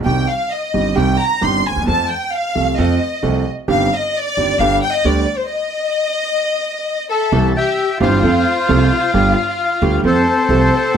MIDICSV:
0, 0, Header, 1, 5, 480
1, 0, Start_track
1, 0, Key_signature, -3, "minor"
1, 0, Tempo, 453858
1, 55, Time_signature, 4, 2, 24, 8
1, 7746, Key_signature, 0, "major"
1, 11602, End_track
2, 0, Start_track
2, 0, Title_t, "Bandoneon"
2, 0, Program_c, 0, 23
2, 7514, Note_on_c, 0, 81, 75
2, 7522, Note_on_c, 0, 76, 65
2, 7961, Note_off_c, 0, 76, 0
2, 8000, Note_on_c, 0, 79, 106
2, 8005, Note_off_c, 0, 81, 0
2, 8008, Note_on_c, 0, 76, 85
2, 8441, Note_off_c, 0, 79, 0
2, 8445, Note_off_c, 0, 76, 0
2, 8480, Note_on_c, 0, 77, 102
2, 8488, Note_on_c, 0, 72, 70
2, 9632, Note_off_c, 0, 72, 0
2, 10585, Note_off_c, 0, 77, 0
2, 10644, Note_on_c, 0, 72, 111
2, 10651, Note_on_c, 0, 69, 91
2, 11602, Note_off_c, 0, 69, 0
2, 11602, Note_off_c, 0, 72, 0
2, 11602, End_track
3, 0, Start_track
3, 0, Title_t, "Violin section"
3, 0, Program_c, 1, 48
3, 56, Note_on_c, 1, 79, 78
3, 280, Note_off_c, 1, 79, 0
3, 302, Note_on_c, 1, 77, 79
3, 538, Note_on_c, 1, 75, 75
3, 540, Note_off_c, 1, 77, 0
3, 1020, Note_off_c, 1, 75, 0
3, 1030, Note_on_c, 1, 79, 84
3, 1266, Note_off_c, 1, 79, 0
3, 1269, Note_on_c, 1, 82, 93
3, 1505, Note_off_c, 1, 82, 0
3, 1513, Note_on_c, 1, 84, 85
3, 1747, Note_off_c, 1, 84, 0
3, 1754, Note_on_c, 1, 80, 82
3, 1988, Note_off_c, 1, 80, 0
3, 1996, Note_on_c, 1, 81, 82
3, 2213, Note_off_c, 1, 81, 0
3, 2228, Note_on_c, 1, 79, 77
3, 2465, Note_off_c, 1, 79, 0
3, 2466, Note_on_c, 1, 77, 88
3, 2944, Note_off_c, 1, 77, 0
3, 2955, Note_on_c, 1, 75, 73
3, 3667, Note_off_c, 1, 75, 0
3, 3927, Note_on_c, 1, 77, 86
3, 4138, Note_off_c, 1, 77, 0
3, 4167, Note_on_c, 1, 75, 84
3, 4394, Note_off_c, 1, 75, 0
3, 4399, Note_on_c, 1, 74, 100
3, 4868, Note_on_c, 1, 77, 94
3, 4869, Note_off_c, 1, 74, 0
3, 5104, Note_off_c, 1, 77, 0
3, 5109, Note_on_c, 1, 79, 86
3, 5216, Note_off_c, 1, 79, 0
3, 5229, Note_on_c, 1, 75, 88
3, 5344, Note_off_c, 1, 75, 0
3, 5348, Note_on_c, 1, 74, 80
3, 5703, Note_on_c, 1, 72, 75
3, 5704, Note_off_c, 1, 74, 0
3, 5821, Note_off_c, 1, 72, 0
3, 5821, Note_on_c, 1, 75, 83
3, 7463, Note_off_c, 1, 75, 0
3, 7503, Note_on_c, 1, 69, 78
3, 7951, Note_off_c, 1, 69, 0
3, 7993, Note_on_c, 1, 67, 89
3, 8437, Note_off_c, 1, 67, 0
3, 8481, Note_on_c, 1, 65, 95
3, 10585, Note_off_c, 1, 65, 0
3, 10633, Note_on_c, 1, 60, 94
3, 11602, Note_off_c, 1, 60, 0
3, 11602, End_track
4, 0, Start_track
4, 0, Title_t, "Grand piano"
4, 0, Program_c, 2, 0
4, 8, Note_on_c, 2, 35, 66
4, 55, Note_on_c, 2, 51, 55
4, 57, Note_on_c, 2, 55, 52
4, 59, Note_on_c, 2, 48, 68
4, 59, Note_on_c, 2, 60, 52
4, 61, Note_on_c, 2, 36, 66
4, 62, Note_off_c, 2, 35, 0
4, 62, Note_on_c, 2, 67, 64
4, 258, Note_off_c, 2, 51, 0
4, 259, Note_off_c, 2, 55, 0
4, 260, Note_off_c, 2, 48, 0
4, 260, Note_off_c, 2, 60, 0
4, 261, Note_off_c, 2, 36, 0
4, 262, Note_off_c, 2, 67, 0
4, 780, Note_on_c, 2, 51, 43
4, 781, Note_on_c, 2, 55, 39
4, 783, Note_on_c, 2, 31, 47
4, 783, Note_on_c, 2, 43, 44
4, 783, Note_on_c, 2, 60, 40
4, 785, Note_on_c, 2, 67, 41
4, 982, Note_off_c, 2, 51, 0
4, 982, Note_off_c, 2, 55, 0
4, 983, Note_off_c, 2, 31, 0
4, 983, Note_off_c, 2, 43, 0
4, 983, Note_off_c, 2, 60, 0
4, 984, Note_off_c, 2, 67, 0
4, 1009, Note_on_c, 2, 55, 63
4, 1011, Note_on_c, 2, 51, 65
4, 1013, Note_on_c, 2, 67, 68
4, 1014, Note_on_c, 2, 48, 70
4, 1016, Note_on_c, 2, 60, 65
4, 1017, Note_on_c, 2, 36, 84
4, 1216, Note_off_c, 2, 55, 0
4, 1218, Note_off_c, 2, 51, 0
4, 1218, Note_off_c, 2, 67, 0
4, 1219, Note_off_c, 2, 48, 0
4, 1220, Note_off_c, 2, 36, 0
4, 1220, Note_off_c, 2, 60, 0
4, 1490, Note_on_c, 2, 51, 62
4, 1494, Note_on_c, 2, 31, 65
4, 1497, Note_on_c, 2, 55, 54
4, 1498, Note_on_c, 2, 43, 70
4, 1499, Note_on_c, 2, 60, 55
4, 1501, Note_on_c, 2, 67, 67
4, 1698, Note_off_c, 2, 51, 0
4, 1699, Note_off_c, 2, 31, 0
4, 1701, Note_off_c, 2, 43, 0
4, 1701, Note_off_c, 2, 55, 0
4, 1702, Note_off_c, 2, 60, 0
4, 1703, Note_off_c, 2, 67, 0
4, 1793, Note_on_c, 2, 38, 47
4, 1857, Note_off_c, 2, 38, 0
4, 1859, Note_on_c, 2, 39, 54
4, 1920, Note_off_c, 2, 39, 0
4, 1920, Note_on_c, 2, 40, 74
4, 1979, Note_on_c, 2, 53, 77
4, 1980, Note_on_c, 2, 57, 60
4, 1981, Note_off_c, 2, 40, 0
4, 1986, Note_on_c, 2, 60, 52
4, 1987, Note_on_c, 2, 41, 76
4, 1988, Note_on_c, 2, 69, 63
4, 2183, Note_off_c, 2, 57, 0
4, 2186, Note_off_c, 2, 41, 0
4, 2186, Note_off_c, 2, 53, 0
4, 2186, Note_off_c, 2, 60, 0
4, 2187, Note_off_c, 2, 69, 0
4, 2697, Note_on_c, 2, 57, 40
4, 2699, Note_on_c, 2, 53, 46
4, 2700, Note_on_c, 2, 36, 45
4, 2700, Note_on_c, 2, 48, 49
4, 2702, Note_on_c, 2, 69, 49
4, 2703, Note_on_c, 2, 60, 37
4, 2901, Note_off_c, 2, 57, 0
4, 2902, Note_off_c, 2, 53, 0
4, 2903, Note_off_c, 2, 36, 0
4, 2903, Note_off_c, 2, 48, 0
4, 2903, Note_off_c, 2, 69, 0
4, 2904, Note_off_c, 2, 60, 0
4, 2940, Note_on_c, 2, 41, 83
4, 2941, Note_on_c, 2, 53, 83
4, 2942, Note_on_c, 2, 57, 62
4, 2944, Note_on_c, 2, 60, 56
4, 2945, Note_on_c, 2, 69, 76
4, 3143, Note_off_c, 2, 41, 0
4, 3143, Note_off_c, 2, 53, 0
4, 3143, Note_off_c, 2, 57, 0
4, 3144, Note_off_c, 2, 60, 0
4, 3145, Note_off_c, 2, 69, 0
4, 3412, Note_on_c, 2, 53, 60
4, 3413, Note_on_c, 2, 48, 69
4, 3413, Note_on_c, 2, 57, 57
4, 3414, Note_on_c, 2, 36, 77
4, 3417, Note_on_c, 2, 60, 52
4, 3417, Note_on_c, 2, 69, 62
4, 3618, Note_off_c, 2, 48, 0
4, 3618, Note_off_c, 2, 53, 0
4, 3618, Note_off_c, 2, 57, 0
4, 3619, Note_off_c, 2, 36, 0
4, 3620, Note_off_c, 2, 60, 0
4, 3620, Note_off_c, 2, 69, 0
4, 3892, Note_on_c, 2, 31, 84
4, 3892, Note_on_c, 2, 51, 61
4, 3892, Note_on_c, 2, 67, 73
4, 3893, Note_on_c, 2, 55, 54
4, 3894, Note_on_c, 2, 43, 81
4, 3897, Note_on_c, 2, 60, 58
4, 4098, Note_off_c, 2, 31, 0
4, 4098, Note_off_c, 2, 51, 0
4, 4098, Note_off_c, 2, 67, 0
4, 4099, Note_off_c, 2, 43, 0
4, 4099, Note_off_c, 2, 55, 0
4, 4101, Note_off_c, 2, 60, 0
4, 4622, Note_on_c, 2, 51, 43
4, 4626, Note_on_c, 2, 55, 35
4, 4628, Note_on_c, 2, 31, 48
4, 4630, Note_on_c, 2, 60, 39
4, 4632, Note_on_c, 2, 43, 48
4, 4632, Note_on_c, 2, 67, 48
4, 4823, Note_off_c, 2, 51, 0
4, 4825, Note_off_c, 2, 55, 0
4, 4826, Note_off_c, 2, 31, 0
4, 4826, Note_off_c, 2, 60, 0
4, 4827, Note_off_c, 2, 43, 0
4, 4827, Note_off_c, 2, 67, 0
4, 4866, Note_on_c, 2, 50, 72
4, 4869, Note_on_c, 2, 31, 78
4, 4869, Note_on_c, 2, 43, 80
4, 4870, Note_on_c, 2, 55, 62
4, 4872, Note_on_c, 2, 59, 56
4, 4873, Note_on_c, 2, 67, 71
4, 5065, Note_off_c, 2, 50, 0
4, 5066, Note_off_c, 2, 31, 0
4, 5066, Note_off_c, 2, 43, 0
4, 5066, Note_off_c, 2, 55, 0
4, 5067, Note_off_c, 2, 59, 0
4, 5068, Note_off_c, 2, 67, 0
4, 5340, Note_on_c, 2, 50, 75
4, 5340, Note_on_c, 2, 55, 55
4, 5341, Note_on_c, 2, 38, 72
4, 5341, Note_on_c, 2, 59, 59
4, 5345, Note_on_c, 2, 67, 69
4, 5542, Note_off_c, 2, 38, 0
4, 5542, Note_off_c, 2, 50, 0
4, 5542, Note_off_c, 2, 55, 0
4, 5542, Note_off_c, 2, 59, 0
4, 5544, Note_off_c, 2, 67, 0
4, 7744, Note_on_c, 2, 52, 72
4, 7745, Note_on_c, 2, 36, 78
4, 7747, Note_on_c, 2, 67, 73
4, 7748, Note_on_c, 2, 48, 77
4, 7748, Note_on_c, 2, 55, 63
4, 7748, Note_on_c, 2, 60, 62
4, 7947, Note_off_c, 2, 36, 0
4, 7947, Note_off_c, 2, 52, 0
4, 7948, Note_off_c, 2, 48, 0
4, 7948, Note_off_c, 2, 67, 0
4, 7949, Note_off_c, 2, 55, 0
4, 7949, Note_off_c, 2, 60, 0
4, 8467, Note_on_c, 2, 52, 72
4, 8469, Note_on_c, 2, 31, 80
4, 8470, Note_on_c, 2, 55, 64
4, 8472, Note_on_c, 2, 67, 78
4, 8474, Note_on_c, 2, 43, 81
4, 8475, Note_on_c, 2, 60, 59
4, 8669, Note_off_c, 2, 52, 0
4, 8670, Note_off_c, 2, 31, 0
4, 8670, Note_off_c, 2, 55, 0
4, 8671, Note_off_c, 2, 67, 0
4, 8672, Note_off_c, 2, 43, 0
4, 8672, Note_off_c, 2, 60, 0
4, 8704, Note_on_c, 2, 53, 80
4, 8706, Note_on_c, 2, 60, 64
4, 8709, Note_on_c, 2, 57, 66
4, 8710, Note_on_c, 2, 41, 85
4, 8713, Note_on_c, 2, 69, 80
4, 8908, Note_off_c, 2, 60, 0
4, 8909, Note_off_c, 2, 53, 0
4, 8910, Note_off_c, 2, 41, 0
4, 8910, Note_off_c, 2, 57, 0
4, 8912, Note_off_c, 2, 69, 0
4, 9187, Note_on_c, 2, 48, 85
4, 9187, Note_on_c, 2, 53, 68
4, 9189, Note_on_c, 2, 36, 88
4, 9189, Note_on_c, 2, 57, 55
4, 9189, Note_on_c, 2, 60, 64
4, 9193, Note_on_c, 2, 69, 75
4, 9388, Note_off_c, 2, 36, 0
4, 9388, Note_off_c, 2, 48, 0
4, 9388, Note_off_c, 2, 53, 0
4, 9388, Note_off_c, 2, 57, 0
4, 9389, Note_off_c, 2, 60, 0
4, 9390, Note_off_c, 2, 69, 0
4, 9661, Note_on_c, 2, 50, 70
4, 9664, Note_on_c, 2, 31, 79
4, 9664, Note_on_c, 2, 55, 63
4, 9665, Note_on_c, 2, 43, 79
4, 9665, Note_on_c, 2, 59, 63
4, 9669, Note_on_c, 2, 67, 77
4, 9863, Note_off_c, 2, 50, 0
4, 9865, Note_off_c, 2, 31, 0
4, 9865, Note_off_c, 2, 55, 0
4, 9866, Note_off_c, 2, 43, 0
4, 9866, Note_off_c, 2, 59, 0
4, 9868, Note_off_c, 2, 67, 0
4, 10382, Note_on_c, 2, 50, 84
4, 10384, Note_on_c, 2, 38, 86
4, 10388, Note_on_c, 2, 55, 70
4, 10390, Note_on_c, 2, 59, 58
4, 10392, Note_on_c, 2, 67, 76
4, 10584, Note_off_c, 2, 38, 0
4, 10585, Note_off_c, 2, 50, 0
4, 10586, Note_off_c, 2, 55, 0
4, 10587, Note_off_c, 2, 59, 0
4, 10588, Note_off_c, 2, 67, 0
4, 10627, Note_on_c, 2, 53, 90
4, 10629, Note_on_c, 2, 41, 92
4, 10629, Note_on_c, 2, 60, 68
4, 10630, Note_on_c, 2, 57, 67
4, 10631, Note_on_c, 2, 69, 82
4, 10826, Note_off_c, 2, 41, 0
4, 10826, Note_off_c, 2, 57, 0
4, 10826, Note_off_c, 2, 60, 0
4, 10827, Note_off_c, 2, 53, 0
4, 10827, Note_off_c, 2, 69, 0
4, 11103, Note_on_c, 2, 53, 64
4, 11104, Note_on_c, 2, 48, 80
4, 11105, Note_on_c, 2, 57, 66
4, 11106, Note_on_c, 2, 36, 84
4, 11108, Note_on_c, 2, 60, 62
4, 11109, Note_on_c, 2, 69, 72
4, 11301, Note_off_c, 2, 53, 0
4, 11302, Note_off_c, 2, 48, 0
4, 11302, Note_off_c, 2, 57, 0
4, 11303, Note_off_c, 2, 36, 0
4, 11304, Note_off_c, 2, 60, 0
4, 11304, Note_off_c, 2, 69, 0
4, 11602, End_track
5, 0, Start_track
5, 0, Title_t, "Upright bass"
5, 0, Program_c, 3, 32
5, 58, Note_on_c, 3, 36, 82
5, 260, Note_off_c, 3, 36, 0
5, 784, Note_on_c, 3, 31, 63
5, 984, Note_off_c, 3, 31, 0
5, 1024, Note_on_c, 3, 36, 82
5, 1224, Note_off_c, 3, 36, 0
5, 1506, Note_on_c, 3, 31, 88
5, 1706, Note_off_c, 3, 31, 0
5, 1808, Note_on_c, 3, 38, 46
5, 1863, Note_off_c, 3, 38, 0
5, 1869, Note_on_c, 3, 39, 52
5, 1925, Note_off_c, 3, 39, 0
5, 1932, Note_on_c, 3, 40, 65
5, 1981, Note_off_c, 3, 40, 0
5, 1988, Note_on_c, 3, 41, 92
5, 2187, Note_off_c, 3, 41, 0
5, 2705, Note_on_c, 3, 36, 59
5, 2905, Note_off_c, 3, 36, 0
5, 2948, Note_on_c, 3, 41, 86
5, 3146, Note_off_c, 3, 41, 0
5, 3420, Note_on_c, 3, 36, 86
5, 3622, Note_off_c, 3, 36, 0
5, 3892, Note_on_c, 3, 31, 88
5, 4098, Note_off_c, 3, 31, 0
5, 4623, Note_on_c, 3, 31, 59
5, 4823, Note_off_c, 3, 31, 0
5, 4854, Note_on_c, 3, 31, 77
5, 5058, Note_off_c, 3, 31, 0
5, 5335, Note_on_c, 3, 38, 87
5, 5539, Note_off_c, 3, 38, 0
5, 7742, Note_on_c, 3, 36, 94
5, 7946, Note_off_c, 3, 36, 0
5, 8465, Note_on_c, 3, 31, 94
5, 8668, Note_off_c, 3, 31, 0
5, 8706, Note_on_c, 3, 41, 91
5, 8908, Note_off_c, 3, 41, 0
5, 9191, Note_on_c, 3, 36, 94
5, 9390, Note_off_c, 3, 36, 0
5, 9665, Note_on_c, 3, 31, 93
5, 9866, Note_off_c, 3, 31, 0
5, 10383, Note_on_c, 3, 38, 105
5, 10583, Note_off_c, 3, 38, 0
5, 10616, Note_on_c, 3, 41, 90
5, 10819, Note_off_c, 3, 41, 0
5, 11092, Note_on_c, 3, 36, 97
5, 11296, Note_off_c, 3, 36, 0
5, 11602, End_track
0, 0, End_of_file